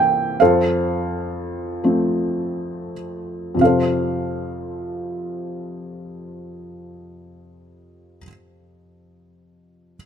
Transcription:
0.00 0.37 C2 soft
0.00 0.37 E3 soft
0.00 0.37 A#3 soft
0.00 0.37 C4 soft
0.00 0.38 G4 soft
0.00 0.38 A#4 soft
0.00 0.42 E5 medium
0.00 0.42 G5 medium
0.40 3.53 F2 soft
0.40 2.93 A4 soft
0.40 2.93 C5 soft
0.40 2.92 F5 medium
1.84 3.56 F3 soft
1.84 3.56 A3 soft
1.84 3.56 C4 soft
3.55 8.16 F2 soft
3.55 8.18 C3 soft
3.59 8.20 F3 soft
3.59 8.22 C4 soft
3.59 8.23 F5 soft
3.64 8.25 A4 soft
3.64 8.28 C5 soft

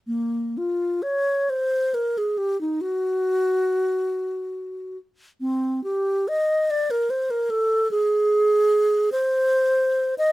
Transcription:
0.07 0.59 A#3 medium
0.58 1.04 F4 medium
1.02 1.51 C#5 medium
1.50 1.96 C5 medium
1.94 2.19 A#4 medium
2.18 2.39 G#4 medium
2.38 2.60 G4 medium
2.61 2.83 D#4 medium
2.81 4.97 F#4 medium
5.41 5.83 C4 medium
5.84 6.30 G4 medium
6.28 6.72 D#5 medium
6.70 6.92 D5 loud
6.91 7.12 A#4 medium
7.10 7.32 C5 medium
7.31 7.52 A#4 medium
7.50 7.91 A4 loud
7.91 9.10 G#4 loud
9.12 10.15 C5 loud
10.18 10.32 D#5 loud

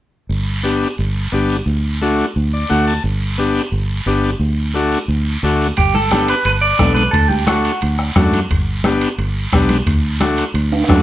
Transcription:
0.30 0.85 G1 medium
0.30 long guiro medium
0.64 0.88 B3 medium
0.64 0.88 D4 medium
0.64 0.88 G4 medium
0.64 short guiro medium
0.82 short guiro medium
0.98 1.26 G1 medium
0.98 long guiro medium
1.32 1.60 G1 medium
1.32 1.56 B3 medium
1.32 1.57 D4 medium
1.32 1.57 G4 medium
1.32 short guiro medium
1.49 short guiro medium
1.66 2.21 D2 medium
1.66 long guiro medium
2.01 2.25 A3 medium
2.01 2.26 D4 medium
2.01 2.25 F#4 medium
2.01 short guiro medium
2.18 short guiro medium
2.35 2.63 D2 medium
2.35 long guiro medium
2.53 2.69 D5 medium
2.69 2.97 D2 medium
2.69 2.93 A3 medium
2.69 2.93 D4 medium
2.69 2.94 F#4 medium
2.69 2.85 F#5 medium
2.69 short guiro medium
2.87 3.03 A5 medium
2.87 short guiro medium
3.03 3.58 G1 medium
3.03 long guiro medium
3.38 3.62 B3 medium
3.38 3.62 D4 medium
3.38 3.63 G4 medium
3.38 short guiro medium
3.55 short guiro medium
3.72 3.99 G1 medium
3.72 long guiro medium
4.06 4.34 G1 medium
4.06 4.30 B3 medium
4.06 4.31 D4 medium
4.06 4.31 G4 medium
4.06 short guiro medium
4.24 short guiro medium
4.40 4.95 D2 medium
4.40 long guiro medium
4.74 4.98 A3 medium
4.74 4.99 D4 medium
4.74 4.99 F#4 medium
4.74 short guiro medium
4.91 short guiro medium
5.08 5.36 D2 medium
5.08 long guiro medium
5.43 5.70 D2 medium
5.43 5.67 A3 medium
5.43 5.67 D4 medium
5.43 5.68 F#4 medium
5.43 short guiro medium
5.61 short guiro medium
5.77 6.32 G1 medium
5.77 5.95 G4 medium
5.77 bombo low medium
5.77 high conga soft
5.77 high timbale medium
5.77 long guiro medium
5.94 6.26 A4 medium
5.94 high conga medium
6.10 6.35 B3 medium
6.10 6.35 D4 medium
6.10 6.35 G4 medium
6.10 bombo rim medium
6.10 high conga medium
6.10 high timbale medium
6.10 short guiro medium
6.28 6.45 B4 medium
6.28 high timbale medium
6.28 short guiro medium
6.45 6.73 G1 medium
6.45 6.51 B4 medium
6.45 high conga soft
6.45 high timbale medium
6.45 long guiro medium
6.62 6.94 D5 medium
6.79 7.07 B1 medium
6.79 7.03 B3 medium
6.79 7.03 D4 medium
6.79 7.04 A4 medium
6.79 bombo low medium
6.79 bombo rim medium
6.79 high conga medium
6.79 high timbale medium
6.79 low timbale medium
6.79 short guiro medium
6.95 7.12 B4 medium
6.95 high conga medium
6.95 high timbale medium
6.95 short guiro medium
7.11 7.68 D2 medium
7.11 7.28 A4 medium
7.11 bombo low medium
7.11 high conga soft
7.11 high timbale medium
7.11 long guiro medium
7.28 7.46 G4 medium
7.28 high conga medium
7.47 7.72 A3 medium
7.47 7.72 D4 medium
7.47 7.79 F#4 medium
7.47 7.73 F#4 medium
7.47 bombo rim medium
7.47 high conga medium
7.47 high timbale medium
7.47 short guiro medium
7.64 high timbale medium
7.64 short guiro medium
7.81 8.10 D2 medium
7.81 high conga soft
7.81 high timbale medium
7.81 long guiro medium
7.99 bombo rim medium
8.16 8.43 F#2 medium
8.16 8.40 A3 medium
8.16 8.40 D4 medium
8.16 8.41 F#4 medium
8.16 bombo low medium
8.16 bombo rim medium
8.16 high conga medium
8.16 high timbale medium
8.16 low timbale medium
8.16 short guiro medium
8.33 high conga medium
8.33 high timbale medium
8.33 short guiro medium
8.49 9.05 G1 medium
8.49 bombo low medium
8.49 high conga soft
8.49 high timbale medium
8.49 long guiro medium
8.84 9.09 B3 medium
8.84 9.09 D4 medium
8.84 9.09 G4 medium
8.84 bombo rim medium
8.84 high conga medium
8.84 high timbale medium
8.84 short guiro medium
9.01 high timbale medium
9.01 short guiro medium
9.18 9.46 G1 medium
9.18 high conga soft
9.18 high timbale medium
9.18 long guiro medium
9.52 9.80 B1 medium
9.52 9.77 B3 medium
9.52 9.78 D4 medium
9.52 9.78 G4 medium
9.52 bombo low medium
9.52 bombo rim medium
9.52 high conga medium
9.52 high timbale medium
9.52 short guiro medium
9.69 high conga medium
9.69 high timbale medium
9.69 short guiro medium
9.86 10.41 D2 medium
9.86 bombo low medium
9.86 high conga soft
9.86 high timbale medium
9.86 long guiro medium
10.20 10.45 A3 medium
10.20 10.45 D4 medium
10.20 10.45 F#4 medium
10.20 bombo rim medium
10.20 high conga medium
10.20 high timbale medium
10.20 short guiro medium
10.37 high timbale medium
10.37 short guiro medium
10.54 10.82 D2 medium
10.54 high conga soft
10.54 high timbale medium
10.54 long guiro medium
10.72 high timbale medium
10.84 high timbale medium
10.88 11.03 F#2 medium
10.88 11.03 A3 medium
10.88 11.03 D4 medium
10.88 11.03 F#4 medium
10.88 bombo low medium
10.88 bombo rim medium
10.88 high conga medium
10.88 short guiro medium
10.96 low timbale medium

